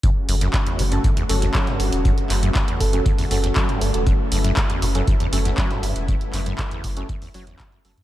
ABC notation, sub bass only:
X:1
M:4/4
L:1/16
Q:1/4=119
K:F#m
V:1 name="Sub bass" clef=bass
z2 F,,,2 z2 F,,,2 z2 F,,,2 z2 F,,, E,,,- | E,,, z F,,,2 z2 F,,,2 z2 F,,,2 z2 F,,, E,,,- | E,,, z F,,,2 z2 F,,,2 z2 F,,,2 z2 F,,, E,,,- | E,,, z F,,,2 z2 F,,,2 z2 F,,,2 z2 F,,, F,, |]